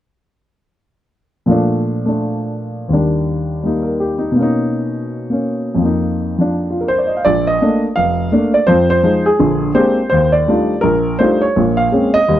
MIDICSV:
0, 0, Header, 1, 2, 480
1, 0, Start_track
1, 0, Key_signature, -2, "major"
1, 0, Tempo, 359928
1, 1975, Time_signature, 4, 2, 24, 8
1, 16533, End_track
2, 0, Start_track
2, 0, Title_t, "Grand piano"
2, 0, Program_c, 0, 0
2, 1947, Note_on_c, 0, 46, 52
2, 1963, Note_on_c, 0, 53, 49
2, 1990, Note_on_c, 0, 57, 47
2, 2010, Note_on_c, 0, 62, 57
2, 2723, Note_off_c, 0, 57, 0
2, 2743, Note_on_c, 0, 57, 39
2, 2759, Note_off_c, 0, 62, 0
2, 2779, Note_on_c, 0, 62, 43
2, 3849, Note_on_c, 0, 39, 43
2, 3871, Note_on_c, 0, 51, 36
2, 3884, Note_off_c, 0, 46, 0
2, 3888, Note_off_c, 0, 57, 0
2, 3890, Note_off_c, 0, 62, 0
2, 3892, Note_off_c, 0, 53, 0
2, 3897, Note_on_c, 0, 55, 41
2, 3910, Note_on_c, 0, 62, 47
2, 4821, Note_off_c, 0, 55, 0
2, 4841, Note_on_c, 0, 55, 41
2, 4869, Note_on_c, 0, 58, 37
2, 4885, Note_on_c, 0, 63, 46
2, 5102, Note_on_c, 0, 70, 42
2, 5336, Note_on_c, 0, 67, 46
2, 5436, Note_off_c, 0, 70, 0
2, 5561, Note_off_c, 0, 63, 0
2, 5581, Note_on_c, 0, 63, 48
2, 5704, Note_off_c, 0, 67, 0
2, 5756, Note_on_c, 0, 47, 51
2, 5787, Note_off_c, 0, 58, 0
2, 5796, Note_off_c, 0, 39, 0
2, 5807, Note_off_c, 0, 51, 0
2, 5807, Note_on_c, 0, 58, 47
2, 5811, Note_off_c, 0, 55, 0
2, 5826, Note_off_c, 0, 62, 0
2, 5856, Note_on_c, 0, 61, 45
2, 5879, Note_off_c, 0, 63, 0
2, 5899, Note_on_c, 0, 63, 57
2, 7046, Note_off_c, 0, 58, 0
2, 7066, Note_on_c, 0, 58, 37
2, 7083, Note_off_c, 0, 61, 0
2, 7103, Note_on_c, 0, 61, 40
2, 7663, Note_on_c, 0, 41, 46
2, 7705, Note_on_c, 0, 53, 41
2, 7710, Note_off_c, 0, 47, 0
2, 7730, Note_off_c, 0, 58, 0
2, 7749, Note_off_c, 0, 61, 0
2, 7764, Note_on_c, 0, 58, 40
2, 7781, Note_off_c, 0, 63, 0
2, 7804, Note_on_c, 0, 63, 49
2, 8493, Note_off_c, 0, 53, 0
2, 8513, Note_on_c, 0, 53, 39
2, 8547, Note_on_c, 0, 62, 46
2, 8940, Note_on_c, 0, 65, 41
2, 9078, Note_on_c, 0, 70, 44
2, 9092, Note_off_c, 0, 65, 0
2, 9180, Note_on_c, 0, 72, 77
2, 9238, Note_off_c, 0, 70, 0
2, 9314, Note_on_c, 0, 74, 45
2, 9431, Note_on_c, 0, 75, 53
2, 9507, Note_off_c, 0, 74, 0
2, 9559, Note_on_c, 0, 77, 50
2, 9578, Note_off_c, 0, 75, 0
2, 9622, Note_off_c, 0, 41, 0
2, 9627, Note_off_c, 0, 72, 0
2, 9654, Note_off_c, 0, 53, 0
2, 9663, Note_on_c, 0, 74, 92
2, 9670, Note_off_c, 0, 62, 0
2, 9672, Note_off_c, 0, 58, 0
2, 9680, Note_on_c, 0, 34, 60
2, 9693, Note_off_c, 0, 63, 0
2, 9718, Note_off_c, 0, 77, 0
2, 9947, Note_off_c, 0, 74, 0
2, 9966, Note_on_c, 0, 75, 82
2, 10085, Note_off_c, 0, 34, 0
2, 10156, Note_on_c, 0, 57, 44
2, 10160, Note_on_c, 0, 58, 43
2, 10167, Note_on_c, 0, 62, 49
2, 10413, Note_off_c, 0, 75, 0
2, 10472, Note_off_c, 0, 57, 0
2, 10474, Note_off_c, 0, 58, 0
2, 10478, Note_off_c, 0, 62, 0
2, 10611, Note_on_c, 0, 77, 88
2, 10632, Note_on_c, 0, 29, 62
2, 11040, Note_off_c, 0, 29, 0
2, 11094, Note_on_c, 0, 57, 50
2, 11102, Note_on_c, 0, 58, 47
2, 11107, Note_on_c, 0, 62, 55
2, 11348, Note_off_c, 0, 77, 0
2, 11388, Note_on_c, 0, 74, 74
2, 11421, Note_off_c, 0, 57, 0
2, 11425, Note_off_c, 0, 58, 0
2, 11427, Note_off_c, 0, 62, 0
2, 11558, Note_off_c, 0, 74, 0
2, 11558, Note_on_c, 0, 72, 89
2, 11573, Note_on_c, 0, 53, 62
2, 11578, Note_on_c, 0, 41, 61
2, 11850, Note_off_c, 0, 72, 0
2, 11870, Note_on_c, 0, 72, 92
2, 11990, Note_off_c, 0, 53, 0
2, 11992, Note_off_c, 0, 41, 0
2, 12047, Note_on_c, 0, 53, 48
2, 12057, Note_on_c, 0, 56, 43
2, 12058, Note_on_c, 0, 63, 50
2, 12323, Note_off_c, 0, 72, 0
2, 12348, Note_on_c, 0, 68, 75
2, 12377, Note_off_c, 0, 53, 0
2, 12382, Note_off_c, 0, 56, 0
2, 12382, Note_off_c, 0, 63, 0
2, 12528, Note_on_c, 0, 50, 63
2, 12532, Note_on_c, 0, 34, 62
2, 12946, Note_off_c, 0, 50, 0
2, 12948, Note_off_c, 0, 34, 0
2, 12963, Note_off_c, 0, 68, 0
2, 12993, Note_on_c, 0, 56, 52
2, 12995, Note_on_c, 0, 58, 45
2, 12999, Note_on_c, 0, 72, 83
2, 13002, Note_on_c, 0, 62, 43
2, 13003, Note_on_c, 0, 60, 45
2, 13008, Note_on_c, 0, 67, 53
2, 13329, Note_off_c, 0, 56, 0
2, 13330, Note_off_c, 0, 58, 0
2, 13334, Note_off_c, 0, 60, 0
2, 13334, Note_off_c, 0, 62, 0
2, 13337, Note_off_c, 0, 67, 0
2, 13444, Note_off_c, 0, 72, 0
2, 13464, Note_on_c, 0, 72, 89
2, 13500, Note_on_c, 0, 39, 60
2, 13768, Note_on_c, 0, 74, 80
2, 13797, Note_off_c, 0, 72, 0
2, 13912, Note_off_c, 0, 39, 0
2, 13974, Note_on_c, 0, 57, 44
2, 13979, Note_on_c, 0, 55, 47
2, 13980, Note_on_c, 0, 62, 45
2, 13984, Note_on_c, 0, 63, 41
2, 13992, Note_on_c, 0, 65, 53
2, 14299, Note_off_c, 0, 57, 0
2, 14301, Note_off_c, 0, 55, 0
2, 14302, Note_off_c, 0, 62, 0
2, 14304, Note_off_c, 0, 63, 0
2, 14308, Note_off_c, 0, 65, 0
2, 14418, Note_on_c, 0, 70, 86
2, 14444, Note_on_c, 0, 34, 63
2, 14458, Note_off_c, 0, 74, 0
2, 14863, Note_off_c, 0, 34, 0
2, 14881, Note_off_c, 0, 70, 0
2, 14919, Note_on_c, 0, 72, 83
2, 14930, Note_on_c, 0, 57, 49
2, 14935, Note_on_c, 0, 55, 50
2, 14935, Note_on_c, 0, 62, 48
2, 14938, Note_on_c, 0, 65, 53
2, 14939, Note_on_c, 0, 63, 48
2, 15211, Note_off_c, 0, 72, 0
2, 15224, Note_on_c, 0, 73, 76
2, 15256, Note_off_c, 0, 57, 0
2, 15258, Note_off_c, 0, 62, 0
2, 15259, Note_off_c, 0, 55, 0
2, 15260, Note_off_c, 0, 65, 0
2, 15261, Note_off_c, 0, 63, 0
2, 15421, Note_on_c, 0, 34, 61
2, 15427, Note_on_c, 0, 46, 62
2, 15677, Note_off_c, 0, 73, 0
2, 15697, Note_on_c, 0, 77, 81
2, 15831, Note_off_c, 0, 34, 0
2, 15834, Note_off_c, 0, 46, 0
2, 15893, Note_on_c, 0, 58, 43
2, 15895, Note_on_c, 0, 56, 51
2, 15897, Note_on_c, 0, 61, 53
2, 15899, Note_on_c, 0, 60, 43
2, 16153, Note_off_c, 0, 77, 0
2, 16187, Note_on_c, 0, 75, 96
2, 16216, Note_off_c, 0, 58, 0
2, 16217, Note_off_c, 0, 56, 0
2, 16219, Note_off_c, 0, 61, 0
2, 16220, Note_off_c, 0, 60, 0
2, 16379, Note_on_c, 0, 39, 65
2, 16380, Note_on_c, 0, 55, 62
2, 16533, Note_off_c, 0, 39, 0
2, 16533, Note_off_c, 0, 55, 0
2, 16533, Note_off_c, 0, 75, 0
2, 16533, End_track
0, 0, End_of_file